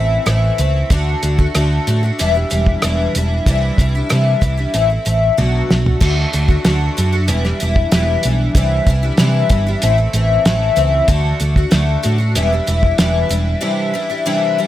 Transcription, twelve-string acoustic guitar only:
Already playing: E3 A3 C4 E4
0.26 A2 E3 A3 C4 E4
0.58 E3 A3 C4 E4
0.91 D3 A3 D4 F#4
1.22 D3 A3 D4 F#4
1.38 A3 D4 F#4
1.55 D3 A3 D4 F#4
1.87 D3 A3 D4 F#4
2.03 A3 D4 F#4
2.19 E2 B2 E3 G3 D4 E4
2.34 E3 G3 D4 E4
2.50 E3 G3 D4 E4
2.83 E2 B2 E3 G3 D4 E4
3.16 E3 G3 D4 E4
3.47 C3 E3 G3 D4 E4
3.79 E3 G3 D4 E4
3.95 G3 D4 E4
4.09 C3 E3 G3 D4 E4
4.41 E3 G3 D4 E4
4.57 G3 D4 E4
4.74 A2 E3 A3 C4 E4
4.90 A3 C4 E4
5.05 E3 A3 C4 E4
5.37 B2 F#3 A3 D4 F#4
5.70 F#3 A3 D4 F#4
6.00 D3 A3 D4 F#4
6.33 D3 A3 D4 F#4
6.48 A3 D4 F#4
6.65 D3 A3 D4 F#4
6.97 D3 A3 D4 F#4
7.12 A3 D4 F#4
7.28 E2 B2 E3 G3 D4 E4
7.45 E3 G3 D4 E4
7.60 E3 G3 D4 E4
7.91 E2 B2 E3 G3 D4 E4
8.24 E3 G3 D4 E4
8.56 C3 E3 G3 D4 E4
8.88 E3 G3 D4 E4
9.03 G3 D4 E4
9.19 C3 E3 G3 D4 E4
9.51 E3 G3 D4 E4
9.67 G3 D4 E4
9.82 A2 E3 A3 C4 E4
9.98 A3 C4 E4
10.14 E3 A3 C4 E4
10.46 A2 E3 A3 C4 E4
10.76 E3 A3 C4 E4
11.08 D3 A3 D4 F#4
11.40 D3 A3 D4 F#4
11.57 A3 D4 F#4
11.71 D3 A3 D4 F#4
12.03 D3 A3 D4 F#4
12.18 A3 D4 F#4
12.35 E2 B2 E3 G3 D4 E4
12.52 E3 G3 D4 E4
12.67 E3 G3 D4 E4
12.99 E2 B2 E3 G3 D4 E4
13.29 E3 G3 D4 E4
13.61 C3 E3 G3 D4 E4
13.94 E3 G3 D4 E4
14.10 G3 D4 E4
14.26 C3 E3 G3 D4 E4
14.58 E3 G3 D4 E4

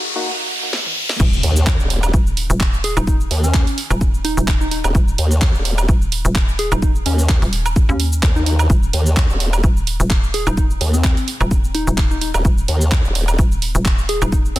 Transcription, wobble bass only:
1.43 D#2
1.80 D#1
3.31 D#2
4.84 D#1
5.18 D#2
5.55 D#1
7.06 D#2
8.23 D#2
8.93 D#2
9.30 D#1
10.81 D#2
12.34 D#1
12.68 D#2
13.05 D#1
14.56 D#2

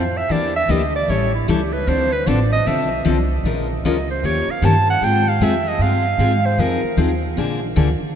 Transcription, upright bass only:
Already playing: F2
0.30 E2
0.68 D2
1.08 A1
1.48 C#2
1.87 D2
2.27 A1
2.65 B1
3.05 C2
3.44 A#1
3.84 C#2
4.23 D#2
4.48 muted upright bass stroke
4.62 G2
5.01 G#2
5.40 F2
5.79 G2
6.18 G#2
6.58 F2
6.83 muted upright bass stroke
6.97 D#2
7.37 A#1
7.76 D2
8.01 muted upright bass stroke

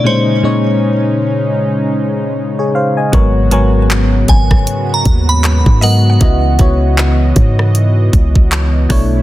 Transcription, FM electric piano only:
0.04 A#2 G#3 C#4 D#4 C5
0.43 A#2 G#3 C#4 D#4 C#5
2.59 G#4 C#5
2.75 C5 F5
2.97 D#5 G#5
3.12 G#2 F#3 B3 A#4 C#5
3.51 G#2 F#3 B3 A#4 C#5
5.82 G#2 F#3 B3 A#4 D#5
6.20 C#3 B3 E4 F#4 D#5
6.58 C#3 B3 E4 F#4 C#5
8.89 B2 A3 D4 E4 C#5

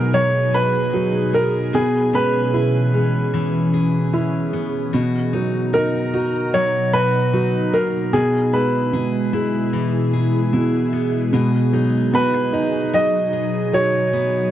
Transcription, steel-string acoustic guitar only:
Already playing: B2 B3 D#4 G#4
0.13 F#3
0.53 G#4
0.93 D#4
1.33 B3
1.73 B2 G#4
2.13 C#4
2.54 G#4
2.94 C#4
3.34 E3
3.73 G#4
4.13 C#4
4.53 B3
4.93 B2 F#4
5.33 D#4
5.73 F#4
6.13 D#4
6.54 F#3
6.93 F#4
7.33 D#4
7.73 A#3
8.13 B2 G#4
8.53 E4
8.93 G#4
9.33 E4
9.73 E3
10.13 G#4
10.53 E4
10.93 B3
11.33 B2 G#4
11.73 D#4
12.13 F#4
12.34 G#4
12.53 D#4
12.93 F#3
13.33 G#4
13.73 D#4
14.13 B3

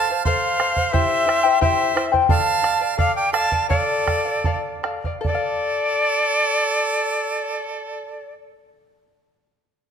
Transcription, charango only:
0.10 C5 F5
0.26 A4 C5 F5
0.59 A4 C5 F5
0.76 C5 F5
0.93 E4 G4 C5 E5 G5
1.26 E4 C5 E5 G5
1.43 E4 C5 G5
1.61 E4 G4 C5 E5 G5
1.95 E4 C5 E5 G5
2.12 E4 C5 G5
2.29 A4 D5 F5
2.63 A4 D5 F5
2.80 D5 F5
2.98 A4 D5 F5
3.33 A4 D5 F5
3.51 D5 F5
3.69 A4 D5 F5
4.06 A4 D5 F5
4.25 D5 F5
4.45 A4 D5 F5
4.83 A4 D5 F5
5.05 D5 F5
5.21 A4
5.29 D5
5.35 F5

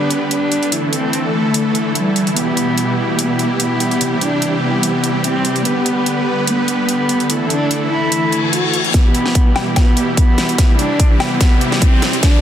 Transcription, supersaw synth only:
Already playing: D3 G3 B3 G4 B4
0.72 D3 E3 A3 E4 A4
2.36 B2 G3 G4
4.01 C3 E3
5.65 D3 B3 B4
7.30 E3 A3 E4 A4
8.94 B2 E3 G3 E4 G4
10.58 C3 G4
12.23 D3 B3 G4 B4

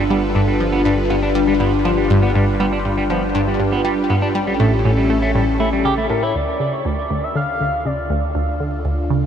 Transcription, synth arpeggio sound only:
0.10 G3
0.35 G2
0.60 F3
0.85 G2
1.10 G2
1.35 G3
1.60 G2
1.85 F3
2.10 G2
2.35 G2
2.60 G3
2.85 G2
3.10 F3
3.35 G2
3.60 G2
3.85 G3
4.10 G2
4.35 G3
4.60 A2
4.85 A2
5.10 A3
5.35 A2
5.60 A3
5.85 C#3
6.10 A2
6.35 D2
6.60 C#3
6.85 D2
7.10 D2
7.35 D3
7.60 D2
7.85 C#3
8.10 D2
8.35 D2
8.60 D3
8.85 D2
9.10 C#3

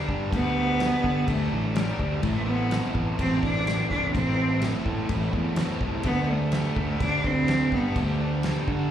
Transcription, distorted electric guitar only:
Already playing: D3 G3
0.07 D4 G4 A4
0.31 D3 G3 D4 G4 A4
0.55 D4 G4 A4
0.79 G3 D4 G4 A4
1.03 D4 G4 A4
1.75 D3 G3 D4 G4 A4
1.98 D4 G4 A4
2.23 A2 E3 A3 C4 E4 A4
2.45 A3 C4 E4 A4
2.69 A3 C4 E4 A4
2.93 A3 C4 E4 A4
3.66 A2 E3 A3 C4 E4 A4
3.90 A3 C4 E4 A4
4.13 A2 E3 A3 C4 E4 A4
4.38 A3 C4 E4 A4
4.62 A3 C4 E4 A4
4.86 A3 C4 E4 A4
5.57 A2 E3 A3 C4 E4 A4
5.81 A3 C4 E4 A4
6.04 D3 G3 D4 G4 A4
6.27 D4 G4 A4
6.52 G3 D4 G4 A4
6.76 D4 G4 A4
7.48 D3 G3 D4 G4 A4
7.72 D4 G4 A4
7.95 D3 G3 D4 G4 A4
8.19 D4 G4 A4
8.42 G3 D4 G4 A4
8.67 D4 G4 A4

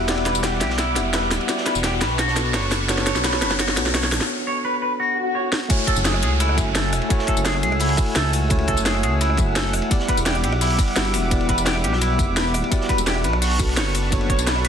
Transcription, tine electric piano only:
Already playing: G3 B3 E4 F#4 G4 D5 F#5
0.07 B3 E4 G4 D5 F#5
0.95 B3 E4 G4 E5 F#5
1.47 B3 E4 F#4 G4 D5
2.35 B3 D4 F#4 A4
2.88 B3 D4 F#4 A4 C#5
3.76 B3 D4 F#4 A4
5.69 A3 E4 F#4 C#5 G#5
6.56 A3 E4 F#4 E5 G#5
7.09 A3 E4 F#4 C#5 G#5
7.97 A3 E4 F#4 E5 G#5
8.49 A3 E4 F#4 C#5 G#5
9.37 A3 E4 F#4 E5 G#5
9.90 B3 E4 G4 D5 F#5
10.96 B3 E4 F#4 G4 F#5
11.30 B3 E4 G4 D5 F#5
12.18 B3 E4 G4 E5 F#5
12.70 B3 E4 F#4 G4 D5
13.58 B3 D4 F#4 A4
14.11 B3 D4 F#4 A4 C#5

